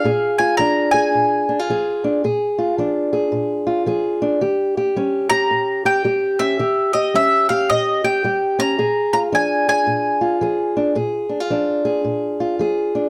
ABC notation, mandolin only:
X:1
M:4/4
L:1/8
Q:"Swing" 1/4=110
K:Bbmix
V:1 name="Mandolin"
f a b a4- a- | a z6 z | z3 b2 g2 =e- | =e _e =e f _e g2 b- |
b b a a4- a- | a z6 z |]